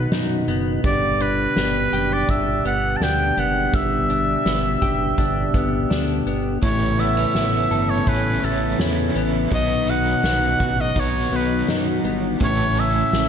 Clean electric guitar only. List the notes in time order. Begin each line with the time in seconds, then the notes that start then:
Already playing: B2 B3 D#4 F#4
0.12 D#4
0.48 B3
1.20 D4
1.57 B3
1.93 G4
2.29 D4
2.65 B3
3.02 D4
3.38 B3
4.10 D4
4.46 B3
4.82 G4
5.18 D4
5.54 B3
5.90 D4
6.27 B3
6.63 A2
6.99 B3
7.17 C#4
7.35 B3
7.71 A4
8.07 C#4
8.43 B3
8.79 C#4
9.15 B3
9.51 B2
9.88 D#4
10.24 B3
10.60 F#4
10.96 D#4
11.32 B3
11.69 D#4
12.04 B3
12.41 A2
12.77 C#4
13.13 A3